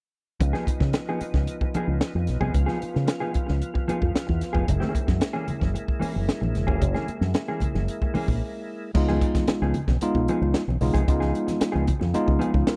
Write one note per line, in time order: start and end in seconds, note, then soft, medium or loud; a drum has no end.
0.40 0.53 C#2 loud
0.40 4.64 F3 medium
0.40 4.64 B3 medium
0.40 2.52 D#4 medium
0.40 muted clean electric guitar stroke soft
0.40 kick loud
0.40 closed hi-hat medium
0.53 0.66 F3 medium
0.53 0.66 B3 medium
0.53 0.66 D#4 medium
0.53 0.67 G#4 medium
0.53 snare soft
0.67 muted clean electric guitar stroke soft
0.67 muted fingered electric bass stroke soft
0.67 kick medium
0.67 closed hi-hat medium
0.80 0.93 C#3 medium
0.80 muted clean electric guitar stroke soft
0.80 kick medium
0.80 snare soft
0.93 muted clean electric guitar stroke soft
0.93 snare loud
0.93 closed hi-hat medium
1.09 1.21 F3 medium
1.09 1.21 B3 medium
1.09 1.22 D#4 medium
1.09 1.22 G#4 medium
1.21 muted fingered electric bass stroke soft
1.21 muted clean electric guitar stroke soft
1.21 closed hi-hat medium
1.34 1.46 C#2 medium
1.34 muted clean electric guitar stroke soft
1.34 kick medium
1.34 snare soft
1.47 closed hi-hat medium
1.61 muted clean electric guitar stroke soft
1.61 kick medium
1.74 1.95 F3 medium
1.74 1.89 B3 medium
1.74 1.88 D#4 medium
1.74 1.88 G#4 loud
1.74 muted fingered electric bass stroke soft
1.74 closed hi-hat medium
1.87 2.00 C#2 medium
1.87 muted clean electric guitar stroke soft
2.01 muted clean electric guitar stroke soft
2.01 snare loud
2.01 closed hi-hat medium
2.15 2.27 F2 medium
2.15 muted clean electric guitar stroke soft
2.27 2.40 B1 medium
2.27 snare soft
2.27 closed hi-hat medium
2.41 2.53 C2 medium
2.41 2.53 F3 medium
2.41 2.53 B3 medium
2.41 2.54 D#4 medium
2.41 2.55 G#4 medium
2.41 kick medium
2.54 2.66 C#2 loud
2.54 4.66 F4 medium
2.54 muted clean electric guitar stroke soft
2.54 kick loud
2.54 closed hi-hat medium
2.66 2.79 F3 medium
2.66 2.80 B3 medium
2.66 2.81 D#4 medium
2.66 2.80 G#4 medium
2.66 snare soft
2.80 muted clean electric guitar stroke soft
2.80 muted fingered electric bass stroke soft
2.80 closed hi-hat medium
2.94 3.07 C#3 medium
2.94 muted clean electric guitar stroke soft
2.94 snare soft
3.06 muted clean electric guitar stroke soft
3.06 snare loud
3.06 closed hi-hat medium
3.20 3.32 F3 medium
3.20 3.33 B3 medium
3.20 3.33 D#4 medium
3.20 3.34 G#4 medium
3.33 muted clean electric guitar stroke soft
3.33 muted fingered electric bass stroke soft
3.33 kick medium
3.33 closed hi-hat medium
3.47 3.61 C#2 medium
3.47 muted clean electric guitar stroke medium
3.47 snare soft
3.62 closed hi-hat medium
3.74 muted clean electric guitar stroke soft
3.74 kick medium
3.88 4.08 F3 medium
3.88 4.00 B3 medium
3.88 3.99 D#4 medium
3.88 3.99 G#4 loud
3.88 muted fingered electric bass stroke soft
3.88 closed hi-hat medium
4.00 4.14 F2 medium
4.00 muted clean electric guitar stroke soft
4.00 kick medium
4.14 muted clean electric guitar stroke soft
4.14 muted fingered electric bass stroke soft
4.14 snare loud
4.14 closed hi-hat medium
4.27 4.41 E2 medium
4.27 muted clean electric guitar stroke soft
4.27 kick medium
4.41 snare soft
4.41 closed hi-hat medium
4.53 4.67 F1 medium
4.53 4.67 F3 medium
4.53 4.67 B3 medium
4.53 4.68 D#4 medium
4.53 4.67 G#4 medium
4.53 kick medium
4.68 4.80 F#1 loud
4.68 8.91 G#3 medium
4.68 8.91 A#3 medium
4.68 8.91 E4 medium
4.68 muted clean electric guitar stroke soft
4.68 kick loud
4.68 closed hi-hat medium
4.68 muted conga soft
4.68 low conga medium
4.80 4.93 E3 medium
4.80 4.94 A#3 medium
4.80 4.94 C#4 medium
4.80 4.95 G#4 medium
4.80 snare soft
4.80 muted conga soft
4.80 high conga medium
4.94 muted clean electric guitar stroke soft
4.94 muted fingered electric bass stroke soft
4.94 kick medium
4.94 closed hi-hat medium
5.07 5.20 F#2 medium
5.07 muted clean electric guitar stroke soft
5.07 kick medium
5.07 snare soft
5.07 high conga medium
5.20 muted clean electric guitar stroke soft
5.20 snare loud
5.20 closed hi-hat medium
5.33 5.46 E3 medium
5.33 5.47 A#3 medium
5.33 5.48 C#4 medium
5.33 5.47 G#4 medium
5.33 muted conga soft
5.47 muted clean electric guitar stroke soft
5.47 muted fingered electric bass stroke soft
5.47 closed hi-hat medium
5.47 high conga soft
5.47 low conga medium
5.60 5.74 F#1 medium
5.60 muted clean electric guitar stroke soft
5.60 kick medium
5.60 snare soft
5.60 high conga medium
5.74 muted clean electric guitar stroke soft
5.74 closed hi-hat medium
5.88 kick medium
6.00 6.16 E3 medium
6.00 6.14 A#3 medium
6.00 6.14 C#4 medium
6.00 6.13 G#4 medium
6.00 muted fingered electric bass stroke soft
6.00 open hi-hat medium
6.15 6.27 F#1 medium
6.15 muted clean electric guitar stroke soft
6.15 high conga medium
6.28 muted clean electric guitar stroke soft
6.28 snare medium
6.28 closed hi-hat medium
6.28 muted conga soft
6.41 6.54 A#1 medium
6.41 muted clean electric guitar stroke soft
6.41 muted conga soft
6.41 high conga medium
6.55 6.68 E1 medium
6.55 snare soft
6.55 closed hi-hat medium
6.55 low conga medium
6.67 6.82 F1 medium
6.67 6.80 E3 medium
6.67 6.81 A#3 medium
6.67 6.81 C#4 medium
6.67 6.82 G#4 medium
6.67 kick medium
6.82 6.94 F#1 loud
6.82 muted clean electric guitar stroke soft
6.82 kick loud
6.82 closed hi-hat medium
6.82 muted conga soft
6.82 low conga medium
6.94 7.08 E3 medium
6.94 7.07 A#3 medium
6.94 7.08 C#4 medium
6.94 7.09 G#4 medium
6.94 snare soft
6.94 high conga medium
7.08 muted clean electric guitar stroke soft
7.08 muted fingered electric bass stroke soft
7.08 closed hi-hat medium
7.21 7.33 F#2 medium
7.21 muted clean electric guitar stroke soft
7.21 snare soft
7.21 high conga medium
7.34 muted clean electric guitar stroke soft
7.34 snare loud
7.34 closed hi-hat medium
7.48 7.61 E3 medium
7.48 7.61 A#3 medium
7.48 7.62 C#4 medium
7.48 7.62 G#4 medium
7.60 muted fingered electric bass stroke soft
7.60 muted clean electric guitar stroke soft
7.60 kick medium
7.60 closed hi-hat medium
7.60 high conga medium
7.60 low conga medium
7.74 7.87 F#1 medium
7.74 muted clean electric guitar stroke soft
7.74 snare soft
7.74 high conga medium
7.88 closed hi-hat medium
7.88 muted conga soft
8.02 muted clean electric guitar stroke soft
8.02 kick medium
8.02 muted conga soft
8.14 8.35 E3 medium
8.14 8.29 A#3 medium
8.14 8.28 C#4 medium
8.14 8.28 G#4 medium
8.14 muted fingered electric bass stroke soft
8.14 open hi-hat medium
8.28 8.40 A#1 medium
8.28 muted clean electric guitar stroke soft
8.28 kick medium
8.28 high conga medium
8.94 9.19 C#2 loud
8.94 9.75 G#3 medium
8.94 9.75 B3 medium
8.94 9.75 D#4 medium
8.94 9.76 F4 medium
8.94 muted clean electric guitar stroke soft
8.94 kick loud
8.94 crash medium
8.94 muted conga soft
9.08 9.20 F3 medium
9.08 9.21 B3 medium
9.08 9.21 D#4 medium
9.08 9.22 G#4 medium
9.08 snare soft
9.08 muted conga soft
9.08 high conga medium
9.21 muted clean electric guitar stroke soft
9.21 kick medium
9.21 closed hi-hat medium
9.35 muted clean electric guitar stroke soft
9.35 muted fingered electric bass stroke soft
9.35 kick loud
9.35 snare soft
9.35 closed hi-hat medium
9.35 high conga medium
9.48 muted fingered electric bass stroke soft
9.48 muted clean electric guitar stroke soft
9.48 snare loud
9.48 closed hi-hat medium
9.48 muted conga soft
9.62 9.73 C#2 medium
9.62 9.75 F3 medium
9.62 9.75 B3 medium
9.62 9.76 D#4 medium
9.62 9.76 G#4 medium
9.62 muted conga soft
9.74 muted clean electric guitar stroke soft
9.74 closed hi-hat medium
9.74 high conga medium
9.74 low conga medium
9.87 10.00 B1 medium
9.87 muted clean electric guitar stroke soft
9.87 kick medium
9.87 snare soft
9.87 high conga medium
10.01 10.62 G#3 medium
10.01 10.62 B3 medium
10.01 10.62 D#4 medium
10.01 10.62 F4 medium
10.01 closed hi-hat medium
10.01 muted conga soft
10.15 10.27 B1 medium
10.15 muted clean electric guitar stroke soft
10.15 kick medium
10.28 10.48 F3 medium
10.28 10.41 B3 medium
10.28 10.41 D#4 medium
10.28 10.40 G#4 medium
10.28 closed hi-hat medium
10.41 10.53 C#2 medium
10.41 muted clean electric guitar stroke soft
10.41 high conga medium
10.54 muted clean electric guitar stroke soft
10.54 snare medium
10.54 closed hi-hat medium
10.54 muted conga soft
10.68 10.80 B1 medium
10.68 muted clean electric guitar stroke soft
10.68 high conga medium
10.81 10.93 B1 medium
10.81 11.01 G#3 medium
10.81 11.01 B3 medium
10.81 11.02 D#4 medium
10.81 11.02 F4 medium
10.81 snare soft
10.81 open hi-hat medium
10.81 low conga medium
10.94 11.06 C2 medium
10.94 11.06 F3 medium
10.94 11.07 B3 medium
10.94 11.08 D#4 medium
10.94 11.08 G#4 medium
10.94 kick medium
10.94 closed hi-hat medium
11.07 11.31 C#2 loud
11.07 11.88 G#3 medium
11.07 11.88 B3 medium
11.07 11.88 D#4 medium
11.07 11.88 F4 medium
11.07 muted clean electric guitar stroke soft
11.07 kick loud
11.07 closed hi-hat medium
11.07 muted conga soft
11.20 11.33 F3 medium
11.20 11.34 B3 medium
11.20 11.35 D#4 medium
11.20 11.34 G#4 medium
11.20 snare soft
11.20 high conga medium
11.34 muted clean electric guitar stroke soft
11.34 closed hi-hat medium
11.47 muted clean electric guitar stroke soft
11.47 muted fingered electric bass stroke soft
11.47 snare soft
11.47 closed hi-hat medium
11.47 high conga medium
11.60 muted clean electric guitar stroke soft
11.60 muted fingered electric bass stroke soft
11.60 snare loud
11.60 closed hi-hat loud
11.60 muted conga soft
11.72 11.86 C#2 medium
11.72 11.85 F3 medium
11.72 11.85 B3 medium
11.72 11.86 D#4 medium
11.72 11.86 G#4 medium
11.72 muted conga soft
11.86 muted clean electric guitar stroke soft
11.86 kick medium
11.86 closed hi-hat medium
11.86 high conga medium
11.86 low conga medium
12.00 12.13 F2 medium
12.00 muted clean electric guitar stroke soft
12.00 snare soft
12.00 high conga medium
12.14 12.74 G#3 medium
12.14 12.74 B3 medium
12.14 12.74 D#4 medium
12.14 12.74 F4 loud
12.14 muted clean electric guitar stroke soft
12.14 muted fingered electric bass stroke soft
12.14 closed hi-hat medium
12.14 muted conga soft
12.26 12.39 C#2 medium
12.26 muted clean electric guitar stroke soft
12.26 kick medium
12.39 12.60 F3 medium
12.39 12.53 B3 medium
12.39 12.53 D#4 loud
12.39 12.52 G#4 loud
12.39 closed hi-hat medium
12.53 12.66 C#2 loud
12.53 muted clean electric guitar stroke soft
12.53 kick medium
12.53 high conga medium
12.67 12.76 A#4 medium
12.67 muted clean electric guitar stroke soft
12.67 snare loud
12.67 closed hi-hat medium